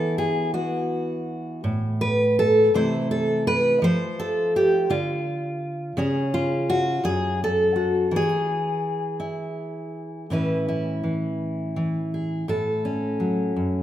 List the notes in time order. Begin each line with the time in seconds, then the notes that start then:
Already playing: E3 B3 E4 A4
0.18 G#4
0.54 B3 F#4
1.64 A2
2.01 B4
2.39 A4
2.74 C3 E3 A3 E4 C5
3.11 A4
3.47 B4
3.82 F3 C5
4.20 A4
4.56 G4
4.90 D3 F4
5.97 C#3 C#4 G#4 C#5
6.34 F4
6.70 F#4
7.04 F#2 G#4
7.44 A4
7.76 F#4
8.11 E3
8.16 G#4
9.20 E4
10.30 A2 E3 C#4 E4 B4
10.69 E4
11.04 E3
11.76 E3
12.14 G#4
12.48 A2 A4
12.85 C#4
13.20 F#3
13.56 F#2